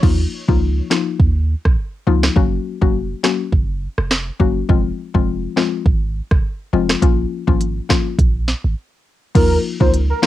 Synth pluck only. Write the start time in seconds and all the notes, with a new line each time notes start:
0.03 F3 A#3 D#4 F4
0.48 F3 A#3 D#4 F4
0.90 F3 A#3 D#4 F4
2.07 F3 A#3 D#4 F4
2.36 F#3 A#3 C#4 F#4
2.81 F#3 A#3 C#4 F#4
3.23 F#3 A#3 C#4 F#4
4.40 F#3 A#3 C#4 F#4
4.69 F3 G#3 C4 F4
5.14 F3 G#3 C4 F4
5.56 F3 G#3 C4 F4
6.73 F3 G#3 C4 F4
7.02 F3 A#3 C#4 F4
7.47 F3 A#3 C#4 F4
7.89 F3 A#3 C#4 F4
9.35 F3 A#3 D#4 F4
9.80 F3 A#3 D#4 F4
10.22 F3 A#3 D#4 F4